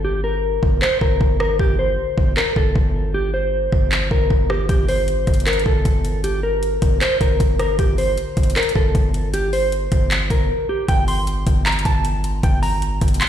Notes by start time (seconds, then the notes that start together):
Already playing: G1
0.05 G4
0.24 A#4
0.63 G1, kick
0.82 C5, clap
1.01 G1 A#4, kick
1.21 G1, kick
1.40 A#4, cross-stick
1.59 G1 G4, kick
1.79 C5
2.18 G1, kick
2.37 A#4, clap
2.56 G1 A4, kick
2.76 G1, kick
3.14 G4
3.34 C5
3.72 G1, kick
3.92 clap
4.11 G1 A#4, kick
4.30 G1, kick
4.50 G4, cross-stick
4.69 G1 G4, kick, closed hi-hat
4.88 C5, open hi-hat
5.08 closed hi-hat
5.27 G1, kick, closed hi-hat
5.34 closed hi-hat
5.40 closed hi-hat
5.47 A#4, clap, closed hi-hat
5.53 closed hi-hat
5.59 closed hi-hat
5.66 G1 A4, kick
5.85 G1, kick, closed hi-hat
6.05 closed hi-hat
6.24 G4, closed hi-hat
6.43 A#4
6.63 closed hi-hat
6.82 G1, kick, closed hi-hat
7.01 C5, clap, closed hi-hat
7.21 G1 A#4, kick, closed hi-hat
7.40 G1, kick, closed hi-hat
7.59 A#4, cross-stick, closed hi-hat
7.79 G1 G4, kick, closed hi-hat
7.98 C5, open hi-hat
8.18 closed hi-hat
8.37 G1, kick, closed hi-hat
8.43 closed hi-hat
8.50 closed hi-hat
8.56 A#4, clap, closed hi-hat
8.63 closed hi-hat
8.69 closed hi-hat
8.76 G1 A4, kick
8.95 G1, kick, closed hi-hat
9.14 closed hi-hat
9.34 G4, closed hi-hat
9.53 C5, open hi-hat
9.72 closed hi-hat
9.92 G1, kick, closed hi-hat
10.11 clap, closed hi-hat
10.30 G1 A#4, kick, closed hi-hat
10.69 G4
10.88 G1 G5, kick, closed hi-hat
11.08 C6, open hi-hat
11.27 closed hi-hat
11.47 G1, kick, closed hi-hat
11.66 A#5, clap, closed hi-hat
11.72 closed hi-hat
11.79 closed hi-hat
11.85 G1 A5, kick, closed hi-hat
12.05 closed hi-hat
12.24 closed hi-hat
12.43 G1 G5, kick, closed hi-hat
12.63 A#5, open hi-hat
12.82 closed hi-hat
13.01 G1, kick, closed hi-hat
13.08 closed hi-hat
13.14 closed hi-hat
13.21 C6, clap, closed hi-hat